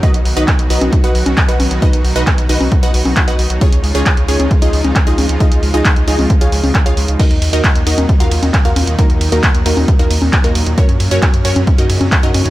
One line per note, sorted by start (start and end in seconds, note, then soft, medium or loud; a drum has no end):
0.00 3.58 B2 medium
0.00 3.58 D#3 medium
0.00 3.57 F#3 medium
0.00 7.16 D#4 medium
0.00 0.32 D#4 medium
0.00 0.32 F#4 medium
0.00 3.58 F#4 medium
0.00 0.32 B4 medium
0.00 0.32 D#5 loud
0.00 kick loud
0.00 closed hi-hat medium
0.14 0.22 B1 medium
0.14 closed hi-hat medium
0.25 0.34 B1 loud
0.25 open hi-hat loud
0.37 0.45 B1 medium
0.37 0.66 D#4 medium
0.37 0.66 F#4 medium
0.37 0.66 B4 medium
0.37 0.66 D#5 medium
0.37 closed hi-hat medium
0.48 kick loud
0.48 clap loud
0.48 closed hi-hat medium
0.59 0.67 B1 medium
0.59 closed hi-hat medium
0.70 0.78 B1 loud
0.70 0.99 D#4 medium
0.70 0.99 F#4 medium
0.70 0.99 B4 medium
0.70 0.99 D#5 loud
0.70 open hi-hat loud
0.81 0.89 B1 medium
0.81 closed hi-hat medium
0.81 high conga medium
0.93 kick loud
0.93 closed hi-hat medium
1.04 1.12 B1 medium
1.04 1.42 F#4 medium
1.04 1.42 B4 medium
1.04 1.42 D#5 medium
1.04 1.42 F#5 loud
1.04 closed hi-hat medium
1.15 1.23 B1 loud
1.15 open hi-hat loud
1.26 1.34 B1 medium
1.26 closed hi-hat medium
1.26 high conga medium
1.37 kick loud
1.37 clap loud
1.37 closed hi-hat medium
1.49 1.57 B1 medium
1.49 1.78 F#4 medium
1.49 1.78 B4 medium
1.49 1.78 D#5 medium
1.49 1.78 F#5 medium
1.49 closed hi-hat medium
1.60 1.68 B1 medium
1.60 open hi-hat loud
1.60 high conga medium
1.71 1.79 B1 medium
1.71 closed hi-hat medium
1.82 2.11 D#4 medium
1.82 2.11 F#4 medium
1.82 2.11 B4 medium
1.82 2.11 D#5 loud
1.82 kick loud
1.82 closed hi-hat medium
1.93 2.01 B1 medium
1.93 closed hi-hat medium
2.05 2.13 B1 loud
2.05 open hi-hat loud
2.16 2.24 B1 loud
2.16 2.45 D#4 medium
2.16 2.45 F#4 medium
2.16 2.45 B4 medium
2.16 2.45 D#5 medium
2.16 closed hi-hat medium
2.27 kick loud
2.27 clap loud
2.27 closed hi-hat medium
2.38 2.46 B1 medium
2.38 closed hi-hat medium
2.49 2.57 B1 loud
2.49 2.78 D#4 medium
2.49 2.78 F#4 medium
2.49 2.78 B4 medium
2.49 2.78 D#5 loud
2.49 open hi-hat loud
2.60 2.69 B1 medium
2.60 open hi-hat medium
2.60 high conga medium
2.72 kick loud
2.72 closed hi-hat medium
2.83 2.91 B1 medium
2.83 3.22 F#4 medium
2.83 3.22 B4 medium
2.83 3.22 D#5 medium
2.83 3.22 F#5 loud
2.83 closed hi-hat medium
2.94 3.02 B1 loud
2.94 open hi-hat loud
3.05 3.13 B1 medium
3.05 open hi-hat medium
3.05 high conga medium
3.16 kick loud
3.16 clap loud
3.16 closed hi-hat medium
3.28 3.36 B1 medium
3.28 3.57 F#4 medium
3.28 3.57 B4 medium
3.28 3.57 D#5 medium
3.28 3.57 F#5 medium
3.28 closed hi-hat medium
3.39 3.47 B1 loud
3.39 open hi-hat loud
3.50 3.58 B1 loud
3.50 closed hi-hat medium
3.61 7.16 C#3 medium
3.61 7.16 F3 medium
3.61 7.16 G#3 medium
3.61 3.90 C#4 medium
3.61 3.90 F4 medium
3.61 7.16 F4 loud
3.61 3.90 G#4 medium
3.61 3.90 C#5 loud
3.61 kick loud
3.61 closed hi-hat medium
3.72 3.81 C#2 medium
3.72 closed hi-hat medium
3.84 3.92 C#2 loud
3.84 open hi-hat loud
3.95 4.03 C#2 medium
3.95 4.24 C#4 medium
3.95 4.24 F4 medium
3.95 4.24 G#4 medium
3.95 4.24 C#5 medium
3.95 closed hi-hat medium
4.06 kick loud
4.06 clap loud
4.06 closed hi-hat medium
4.17 4.25 C#2 medium
4.17 closed hi-hat medium
4.28 4.37 C#2 loud
4.28 4.57 C#4 medium
4.28 4.57 F4 medium
4.28 4.57 G#4 medium
4.28 4.57 C#5 medium
4.28 open hi-hat loud
4.40 4.48 C#2 medium
4.40 closed hi-hat medium
4.40 high conga medium
4.51 kick loud
4.51 closed hi-hat medium
4.62 4.70 C#2 medium
4.62 5.01 D#4 medium
4.62 5.01 F4 medium
4.62 5.01 G#4 medium
4.62 5.01 D#5 loud
4.62 closed hi-hat medium
4.73 4.81 C#2 loud
4.73 open hi-hat loud
4.84 4.93 C#2 medium
4.84 closed hi-hat medium
4.84 high conga medium
4.96 kick loud
4.96 clap loud
4.96 closed hi-hat medium
5.07 5.15 C#2 medium
5.07 5.36 D#4 medium
5.07 5.36 F4 medium
5.07 5.36 G#4 medium
5.07 5.36 D#5 loud
5.07 closed hi-hat medium
5.18 5.26 C#2 loud
5.18 open hi-hat loud
5.18 high conga medium
5.29 5.37 C#2 medium
5.29 closed hi-hat medium
5.40 5.69 D#4 medium
5.40 5.69 F4 medium
5.40 5.69 G#4 medium
5.40 5.69 D#5 loud
5.40 kick loud
5.40 closed hi-hat medium
5.52 5.60 C#2 medium
5.52 closed hi-hat medium
5.63 5.71 C#2 loud
5.63 open hi-hat loud
5.74 5.82 C#2 medium
5.74 6.03 D#4 medium
5.74 6.03 F4 medium
5.74 6.03 G#4 medium
5.74 6.03 D#5 loud
5.74 closed hi-hat medium
5.85 kick loud
5.85 clap loud
5.85 closed hi-hat medium
5.96 6.04 C#2 medium
5.96 closed hi-hat medium
6.08 6.16 C#2 loud
6.08 6.37 D#4 medium
6.08 6.37 F4 medium
6.08 6.37 G#4 medium
6.08 6.37 D#5 medium
6.08 open hi-hat loud
6.19 6.27 C#2 loud
6.19 open hi-hat medium
6.19 high conga medium
6.30 kick loud
6.30 closed hi-hat medium
6.41 6.49 C#2 medium
6.41 6.80 F4 medium
6.41 6.80 G#4 medium
6.41 6.80 C#5 medium
6.41 6.80 F5 loud
6.41 closed hi-hat medium
6.52 6.60 C#2 loud
6.52 open hi-hat loud
6.64 6.72 C#2 medium
6.64 open hi-hat medium
6.64 high conga medium
6.75 kick loud
6.75 clap loud
6.75 closed hi-hat medium
6.86 6.94 C#2 medium
6.86 7.15 F4 medium
6.86 7.15 G#4 medium
6.86 7.15 C#5 medium
6.86 7.15 F5 loud
6.86 closed hi-hat medium
6.97 7.05 C#2 loud
6.97 open hi-hat loud
7.08 7.16 C#2 medium
7.08 closed hi-hat medium
7.19 12.50 A#2 medium
7.19 10.74 D#3 medium
7.19 12.50 F#3 medium
7.19 7.48 D#4 medium
7.19 10.74 D#4 medium
7.19 7.48 F#4 medium
7.19 7.48 A#4 medium
7.19 7.48 D#5 loud
7.19 kick loud
7.19 closed hi-hat medium
7.19 crash medium
7.31 7.39 D#2 medium
7.31 closed hi-hat medium
7.42 7.50 D#2 loud
7.42 open hi-hat loud
7.42 ride medium
7.53 7.61 D#2 loud
7.53 7.82 D#4 medium
7.53 7.82 F#4 medium
7.53 7.82 A#4 medium
7.53 7.82 D#5 medium
7.53 closed hi-hat medium
7.64 kick loud
7.64 clap loud
7.64 closed hi-hat medium
7.75 7.84 D#2 medium
7.75 closed hi-hat medium
7.87 7.95 D#2 medium
7.87 8.16 D#4 medium
7.87 8.16 F#4 medium
7.87 8.16 A#4 medium
7.87 8.16 D#5 medium
7.87 open hi-hat loud
7.87 ride medium
7.98 8.06 D#2 medium
7.98 closed hi-hat medium
7.98 high conga medium
8.09 kick loud
8.09 closed hi-hat medium
8.20 8.28 D#2 medium
8.20 8.59 F4 medium
8.20 8.59 F#4 medium
8.20 8.59 A#4 medium
8.20 8.59 F5 loud
8.20 closed hi-hat medium
8.31 8.40 D#2 loud
8.31 open hi-hat loud
8.31 ride medium
8.43 8.51 D#2 medium
8.43 closed hi-hat medium
8.43 high conga medium
8.54 kick loud
8.54 clap loud
8.54 closed hi-hat medium
8.65 8.73 D#2 medium
8.65 8.94 F4 medium
8.65 8.94 F#4 medium
8.65 8.94 A#4 medium
8.65 8.94 F5 medium
8.65 closed hi-hat medium
8.76 8.84 D#2 loud
8.76 open hi-hat loud
8.76 ride medium
8.76 high conga medium
8.87 8.95 D#2 medium
8.87 closed hi-hat medium
8.99 9.28 A#3 medium
8.99 9.28 D#4 medium
8.99 9.28 F#4 medium
8.99 9.28 A#4 loud
8.99 kick loud
8.99 closed hi-hat medium
9.10 9.18 D#2 medium
9.10 closed hi-hat medium
9.21 9.29 D#2 loud
9.21 open hi-hat loud
9.21 ride medium
9.32 9.40 D#2 medium
9.32 9.61 A#3 medium
9.32 9.61 D#4 medium
9.32 9.61 F#4 medium
9.32 9.61 A#4 loud
9.32 closed hi-hat medium
9.43 kick loud
9.43 clap loud
9.43 closed hi-hat medium
9.55 9.63 D#2 medium
9.55 closed hi-hat medium
9.66 9.74 D#2 medium
9.66 9.95 A#3 medium
9.66 9.95 D#4 medium
9.66 9.95 F#4 medium
9.66 9.95 A#4 medium
9.66 open hi-hat loud
9.66 ride medium
9.77 9.85 D#2 medium
9.77 open hi-hat medium
9.77 high conga medium
9.88 kick loud
9.88 closed hi-hat medium
9.99 10.07 D#2 medium
9.99 10.38 A#3 medium
9.99 10.38 D#4 medium
9.99 10.38 F#4 medium
9.99 10.38 A#4 loud
9.99 closed hi-hat medium
10.11 10.19 D#2 loud
10.11 open hi-hat loud
10.11 ride medium
10.22 10.30 D#2 loud
10.22 open hi-hat medium
10.22 high conga medium
10.33 kick loud
10.33 clap loud
10.33 closed hi-hat medium
10.44 10.52 D#2 medium
10.44 10.73 A#3 medium
10.44 10.73 D#4 medium
10.44 10.73 F#4 medium
10.44 10.73 A#4 loud
10.44 closed hi-hat medium
10.55 10.63 D#2 medium
10.55 open hi-hat loud
10.55 ride medium
10.66 10.75 D#2 medium
10.66 closed hi-hat medium
10.78 12.50 C#3 medium
10.78 12.50 C#4 medium
10.78 11.07 C#4 medium
10.78 11.07 F#4 medium
10.78 11.07 A#4 medium
10.78 11.07 C#5 loud
10.78 kick loud
10.78 closed hi-hat medium
10.89 10.97 F#2 medium
10.89 closed hi-hat medium
11.00 11.08 F#2 loud
11.00 open hi-hat loud
11.00 ride medium
11.11 11.19 F#2 medium
11.11 11.40 C#4 medium
11.11 11.40 F#4 medium
11.11 11.40 A#4 medium
11.11 11.40 C#5 loud
11.11 closed hi-hat medium
11.22 kick loud
11.22 clap loud
11.22 closed hi-hat medium
11.34 11.42 F#2 medium
11.34 closed hi-hat medium
11.45 11.53 F#2 loud
11.45 11.74 C#4 medium
11.45 11.74 F#4 medium
11.45 11.74 A#4 medium
11.45 11.74 C#5 loud
11.45 open hi-hat loud
11.45 ride medium
11.56 11.64 F#2 loud
11.56 closed hi-hat medium
11.56 high conga medium
11.67 kick loud
11.67 closed hi-hat medium
11.78 11.87 F#2 medium
11.78 12.17 D#4 medium
11.78 12.17 F#4 medium
11.78 12.17 A#4 medium
11.78 12.17 D#5 medium
11.78 closed hi-hat medium
11.90 11.98 F#2 loud
11.90 open hi-hat loud
11.90 ride medium
12.01 12.09 F#2 loud
12.01 closed hi-hat medium
12.01 high conga medium
12.12 kick loud
12.12 clap loud
12.12 closed hi-hat medium
12.23 12.31 F#2 medium
12.23 12.50 D#4 medium
12.23 12.50 F#4 medium
12.23 12.50 A#4 medium
12.23 12.50 D#5 loud
12.23 closed hi-hat medium
12.34 12.42 F#2 loud
12.34 open hi-hat loud
12.34 ride medium
12.34 high conga medium
12.46 12.50 F#2 medium
12.46 closed hi-hat medium